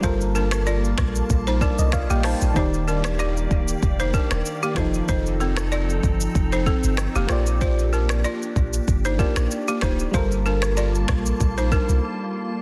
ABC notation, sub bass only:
X:1
M:4/4
L:1/16
Q:"Swing 16ths" 1/4=95
K:Gm
V:1 name="Sub bass" clef=bass
G,,,6 B,,,2 B,,,3 C,,2 B,,,2 B,,, | z6 D,,,2 F,,,3 E,,, z2 F,,,2 | F,,,6 G,,,2 F,,,3 G,,,2 F,,, B,,,2- | B,,,6 B,,,2 G,,,3 B,,, z2 D,,,2 |
G,,,6 B,,,2 B,,,3 C,, z4 |]